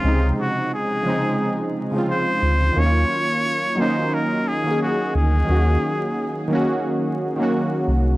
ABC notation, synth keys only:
X:1
M:4/4
L:1/16
Q:"Swing 16ths" 1/4=88
K:Ebdor
V:1 name="Synth keys"
[C,D,A,CE]6 [D,F,A,CE]4- [D,F,A,CE] [D,F,A,CF]4- [D,F,A,CF] | [E,G,B,DEF]6 [E,G,B,DE]4- [E,G,B,DE] [E,G,B,DA]4- [E,G,B,DA] | [E,G,B,DG]6 [E,G,B,DG]4- [E,G,B,DG] [E,G,B,DG]4- [E,G,B,DG] |]